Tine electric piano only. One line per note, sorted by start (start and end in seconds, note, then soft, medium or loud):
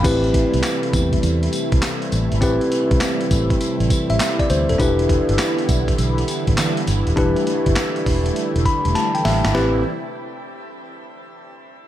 0.03 2.37 C4 medium
0.03 2.38 E4 medium
0.03 2.38 G4 medium
0.03 2.39 B4 medium
2.41 4.75 C4 medium
2.41 4.75 E4 medium
2.41 4.76 G4 medium
2.41 3.88 B4 medium
4.10 4.38 E5 medium
4.40 4.49 D5 medium
4.50 4.68 C5 medium
4.69 4.98 A4 medium
4.78 7.13 D4 medium
4.78 7.13 E4 medium
4.78 7.13 G4 medium
4.78 7.14 B4 medium
7.16 9.50 D4 medium
7.16 9.51 E4 medium
7.16 9.51 G4 medium
7.16 9.51 B4 medium
8.66 8.93 B5 medium
8.95 9.13 A5 medium
9.15 9.24 G5 medium
9.25 9.53 E5 medium
9.55 9.82 C4 medium
9.55 9.82 E4 medium
9.55 9.82 G4 medium
9.55 9.82 B4 loud